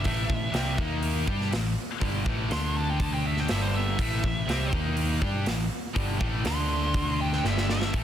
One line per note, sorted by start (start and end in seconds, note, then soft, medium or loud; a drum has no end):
0.04 0.28 A1 medium
0.04 0.28 A2 medium
0.04 0.28 E3 medium
0.04 0.30 A3 loud
0.04 0.77 E5 loud
0.04 kick medium
0.04 open hi-hat medium
0.29 0.53 A1 medium
0.29 0.49 A2 medium
0.29 0.49 E3 medium
0.29 kick medium
0.52 0.77 C2 medium
0.52 0.77 C3 medium
0.52 0.78 G3 medium
0.52 0.79 C4 loud
0.52 snare loud
0.52 open hi-hat medium
0.77 1.24 D#2 medium
0.77 1.26 D#3 medium
0.77 1.26 A#3 medium
0.77 1.27 D#4 medium
0.77 kick loud
1.02 open hi-hat medium
1.26 1.51 G2 medium
1.26 1.51 G3 medium
1.26 1.51 D4 medium
1.26 1.51 G4 loud
1.26 kick medium
1.41 snare soft
1.51 1.75 A1 medium
1.51 1.72 A2 medium
1.51 1.72 E3 medium
1.51 snare loud
1.51 open hi-hat medium
2.00 2.25 G1 medium
2.00 2.25 G2 medium
2.00 2.25 D3 loud
2.00 2.25 G3 loud
2.00 kick medium
2.00 open hi-hat soft
2.25 2.49 A1 medium
2.25 2.49 A2 medium
2.25 2.50 E3 medium
2.25 2.49 A3 medium
2.25 kick loud
2.49 3.45 D2 medium
2.49 3.48 D3 medium
2.49 3.48 A3 medium
2.49 3.48 D4 medium
2.49 2.75 C6 loud
2.49 snare loud
2.49 open hi-hat soft
2.77 2.90 A5 loud
2.90 3.00 G5 medium
3.00 3.12 A5 medium
3.00 kick loud
3.00 open hi-hat medium
3.14 3.25 G5 medium
3.27 3.39 E5 medium
3.37 3.50 G5 medium
3.37 snare soft
3.48 3.96 G1 medium
3.48 3.97 G2 medium
3.48 3.98 D3 loud
3.48 3.98 G3 medium
3.48 3.62 E5 medium
3.48 snare loud
3.48 open hi-hat medium
3.62 3.74 C5 medium
3.75 3.98 E5 medium
3.99 4.22 A1 medium
3.99 4.22 A2 loud
3.99 4.23 E3 loud
3.99 4.23 A3 loud
3.99 4.72 E5 loud
3.99 kick medium
3.99 open hi-hat medium
4.23 4.46 A1 medium
4.23 4.43 A2 medium
4.23 4.43 E3 medium
4.23 kick medium
4.48 4.71 C2 medium
4.48 4.72 C3 loud
4.48 4.72 G3 medium
4.48 4.73 C4 loud
4.48 snare loud
4.48 open hi-hat medium
4.72 5.19 D#2 medium
4.72 5.21 D#3 medium
4.72 5.21 A#3 medium
4.72 5.21 D#4 loud
4.72 kick loud
4.97 open hi-hat medium
5.21 5.45 G2 loud
5.21 5.45 G3 medium
5.21 5.46 D4 medium
5.21 5.46 G4 loud
5.21 kick medium
5.45 5.69 A1 medium
5.45 5.66 A2 medium
5.45 5.65 E3 medium
5.45 snare loud
5.45 open hi-hat medium
5.94 6.19 G1 medium
5.94 6.19 G2 medium
5.94 6.19 D3 loud
5.94 6.19 G3 loud
5.94 kick medium
5.94 open hi-hat medium
6.19 6.43 A1 medium
6.19 6.44 A2 medium
6.19 6.44 E3 loud
6.19 6.44 A3 loud
6.19 kick loud
6.44 7.40 D2 medium
6.44 7.43 D3 medium
6.44 7.44 A3 loud
6.44 7.44 D4 loud
6.44 7.18 C6 loud
6.44 snare loud
6.44 open hi-hat medium
6.94 kick loud
6.94 open hi-hat medium
7.21 7.44 G5 loud
7.33 snare soft
7.44 7.90 G1 medium
7.44 7.93 G2 medium
7.44 7.93 D3 medium
7.44 7.94 G3 loud
7.44 7.70 E5 loud
7.44 snare medium
7.58 snare medium
7.69 7.95 E5 loud
7.69 snare medium
7.82 snare medium
7.93 8.04 A1 medium
7.93 8.04 A2 medium
7.93 8.04 E3 medium
7.93 8.04 A3 medium
7.93 kick medium
7.93 open hi-hat medium